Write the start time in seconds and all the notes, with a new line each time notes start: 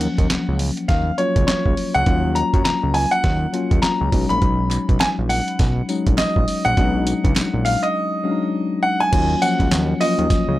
Already playing: F3 F#3 A#3 C#4 F#5
0.01 closed hi-hat
0.18 D#2, kick, closed hi-hat
0.30 C#2, snare, clap, closed hi-hat
0.48 C#2
0.59 open hi-hat
0.77 closed hi-hat
0.88 D#2 F5, kick, snare, closed hi-hat
1.18 F#3 A#3 C#4 F4 C#5, closed hi-hat
1.36 C#2, kick, closed hi-hat
1.47 C#5, snare, clap, closed hi-hat
1.66 C#2, kick
1.77 open hi-hat
1.95 C#2 F#5, closed hi-hat
2.06 D#2 F#3 A#3 C#4 F4, kick, closed hi-hat
2.35 A#5, closed hi-hat
2.54 F#2, kick, closed hi-hat
2.64 C#2 A#5, snare, clap, closed hi-hat
2.83 C#2
2.94 G#5, open hi-hat
3.11 F#5, closed hi-hat
3.24 D#2, kick, snare, closed hi-hat
3.53 F#3 A#3 C#4 F4, closed hi-hat
3.71 D#2, kick, closed hi-hat
3.82 A#5, snare, clap, closed hi-hat
4.01 C#2
4.12 B1 F#3 G#3 C#4 D#4, kick, open hi-hat
4.29 A#1 B5, closed hi-hat
4.42 B1, kick, closed hi-hat
4.71 clap, closed hi-hat, tambourine
4.89 B1, kick, closed hi-hat
5.00 G#5, snare, clap, closed hi-hat, tambourine
5.18 A#1
5.29 F#5, open hi-hat, tambourine
5.48 closed hi-hat
5.59 B1, kick, snare, closed hi-hat, tambourine
5.89 F#3 G#3 C#4 D#4, closed hi-hat, tambourine
6.07 A#1, kick, closed hi-hat
6.18 A#1 D#5, snare, clap, closed hi-hat, tambourine
6.36 A#1, kick
6.48 open hi-hat, tambourine
6.65 A#1 F#5, closed hi-hat
6.77 B1 F#3 G#3 C#4 D4, kick, closed hi-hat
6.84 D#4
7.07 closed hi-hat, tambourine
7.24 C#2, kick, closed hi-hat
7.36 A#1, snare, clap, closed hi-hat, tambourine
7.54 A#1
7.65 F5, open hi-hat, tambourine
7.83 D#5, closed hi-hat
8.24 F#3 G#3 C#4 D4
8.31 D#4
8.83 F#5
9.00 G#5
9.12 D#2 F#3 A#3 C#4 F4, kick, closed hi-hat, crash
9.41 F3 F#3 A#3 C#4 F#5, closed hi-hat, tambourine
9.60 C#2, kick, closed hi-hat
9.71 D#2, snare, clap, closed hi-hat, tambourine
10.00 F3 A#3 C#4 F4 D#5, open hi-hat, tambourine
10.07 F#3
10.19 D#2, closed hi-hat
10.30 kick, snare, closed hi-hat, tambourine
10.48 C#2